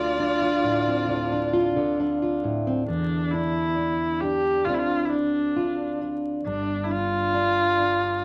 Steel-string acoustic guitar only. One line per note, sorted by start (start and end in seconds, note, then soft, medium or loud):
0.00 1.07 D2 medium
0.00 1.75 D3 medium
0.00 0.19 D4 medium
0.00 0.41 F4 medium
0.20 1.31 D4 medium
0.42 1.07 F4 medium
0.64 1.76 A2 medium
0.87 2.66 C4 medium
1.08 2.87 D2 medium
1.08 1.52 F4 medium
1.32 1.99 D4 medium
1.54 2.21 F4 medium
1.76 4.67 D3 medium
2.00 2.83 D4 medium
2.22 2.83 F4 medium
2.44 2.88 A2 medium
2.67 2.83 C4 medium
2.88 4.62 E2 medium
3.34 3.77 D4 soft
3.78 4.23 D4 soft
4.23 4.69 D4 soft
4.66 6.45 D2 medium
4.66 8.25 D3 soft
4.66 6.41 C4 medium
4.66 5.12 D4 soft
5.12 6.01 D4 medium
5.57 6.41 F4 medium
6.01 6.90 D4 soft
6.45 8.25 G2 medium
6.91 7.34 D4 soft
7.35 7.79 D4 soft
7.79 8.25 D4 medium